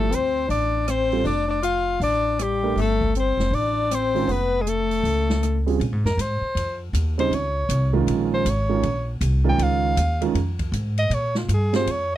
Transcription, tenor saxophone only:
Already playing: A3
0.11 C4
0.48 D4
0.88 C4
1.24 D4
1.48 D4
1.62 F4
2.02 D4
2.40 G3
2.78 A3
3.16 C4
3.53 D4
3.91 C4
4.28 B3
4.61 G#3
4.67 A3

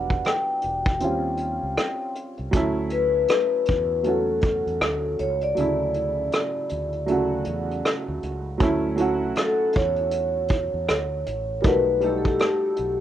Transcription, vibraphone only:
Already playing: F#5
0.26 G5
2.92 B4
4.06 A4
5.20 C#5
5.43 D5
9.38 A4
9.76 C#5
11.61 A#4
11.65 B4
12.04 G4
12.18 A4
12.27 G4

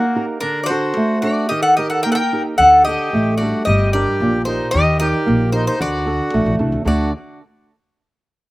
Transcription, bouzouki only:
Already playing: F#4
0.40 A#4
0.63 C5 D5
1.22 D5
1.49 D#5
1.63 F#5
1.77 D#5
1.90 F#5
2.03 G5
2.12 F#5 G5
2.58 F#5
2.85 D#5
3.38 D5
3.65 D#5
3.93 D5
4.45 C5
4.71 D#5
5.00 D5
5.52 C5
5.67 C5
5.82 D5
6.87 D5

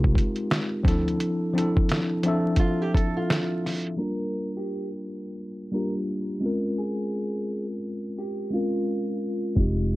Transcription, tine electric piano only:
Already playing: G#3 C4 D#4 F4 G4 A#4
0.83 F3 C4 D4 E4
0.88 A4
1.53 F3 C4 D4 E4
1.58 A4
2.23 F3 C4 D4 E5
2.28 A4
3.97 G3 A#3 D4 F4
4.02 A#4
5.72 G3 A#3 D4 F4
5.76 G4
6.40 G#3 C4 C#4 F4
6.46 A#4
8.50 G#3 C4 C#4 F4
8.56 A#4
9.55 G#3 C4 D#4
9.59 F4 G4

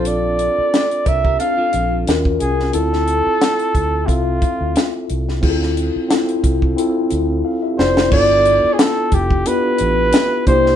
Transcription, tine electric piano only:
Already playing: C4 D4 F4 A4
1.40 C4 D4 F4 A4
2.07 C#4 F4 F#4 A#4
2.73 C4 E4 F4 A4
4.06 C4 F4 A4 E5
5.41 C4 E4 F4 G#4
5.50 A4
6.08 C4 E4 F4 A4
6.76 C4 E4 F4 A4
7.45 A4 F5
7.62 G4 E5
7.78 F4 D5
7.95 E4 C5
8.10 B3 D4 F4 A4
9.46 B3 D4 F4 G4
10.46 A#3 D4 E4 G4

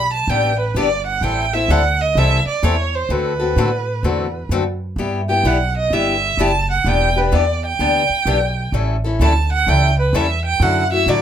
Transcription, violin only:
Already playing: B5
0.13 A5
0.29 G5
0.59 B4
0.77 D5
1.07 F#5
1.23 G5
1.54 E5
1.71 F#5
2.01 D#5
2.18 E5
2.48 D5
2.64 C#5
2.95 C5
3.11 B4
5.30 G5
5.47 F#5
5.77 D#5
5.94 E5
6.41 A5
6.71 F#5
6.88 G5
7.18 B4
7.35 D5
7.66 G5
9.22 A5
9.52 F#5
9.69 G5
10.00 B4
10.16 E5
10.45 G5
10.62 F#5
10.93 E5
11.09 D5

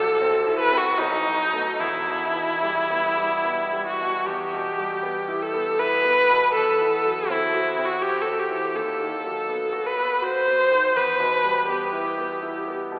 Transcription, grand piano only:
Already playing: C2 C3 F#3
0.21 C4
0.47 E4
0.72 C4
0.99 B1
1.26 F#3
1.53 A3 B3
1.79 E1 E2
2.08 B2
2.35 E3
2.62 G3
2.90 B3
3.17 G3
3.45 B3
3.73 G3
4.01 B2
4.27 E2
4.53 B2
4.78 G3
5.03 B3
5.28 E4
5.54 B3
5.79 E4
6.05 B3
6.30 B2
6.55 E2
6.81 E3
7.05 F#3
7.30 C4
7.54 F#4
7.78 C4
8.02 F#4
8.26 C4
8.50 E3
8.75 D#2
9.00 D#3
9.24 F#3
9.49 B3
9.73 F#4
9.98 B3
10.22 F#4
10.48 B3
10.71 D#3
10.96 E2
11.20 B2
11.44 G3
11.69 B3
11.93 E4
12.18 B3
12.43 E4
12.68 B3
12.92 B2

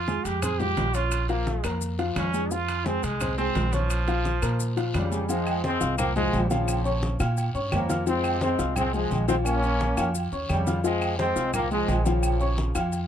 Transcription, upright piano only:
0.08 G#3 G#4 G#5
0.42 C4 C5 C6
0.59 G#3 F4 F5
0.94 C#4 C#5 C#6
1.29 F3 F4 F5
1.64 A#3 A#4 A#5
1.98 F3 F4 F5
2.33 G#3 G#4 G#5
2.51 F3 F4 F5
2.86 G#3 G#4 G#5
3.21 C4 C5 C6
3.38 G#3 G#4 G#5
3.73 C#4 C#5 C#6
4.07 F3 F4 F5
4.42 A#3 A#4 A#5
4.76 F3 F4 F5
5.11 G#3 G#4 G#5
5.29 F3 F4 F5
5.63 C4 C5 C6
5.81 F4 F5 F6
6.16 G#3 G#4 G#5
6.50 F3 F4 F5
6.85 C#4 C#5 C#6
7.20 F4 F5 F6
7.54 C#4 C#5 C#6
7.89 F4 F5 F6
8.07 F3 F4 F5
8.41 C4 C5 C6
8.59 F4 F5 F6
8.94 G#3 G#4 G#5
9.28 F3 F4 F5
9.63 C#4 C#5 C#6
9.98 F4 F5 F6
10.32 C#4 C#5 C#6
10.67 F4 F5 F6
10.84 F3 F4 F5
11.19 C4 C5 C6
11.36 F4 F5 F6
11.71 G#3 G#4 G#5
12.06 F3 F4 F5
12.40 C#4 C#5 C#6
12.75 F4 F5 F6

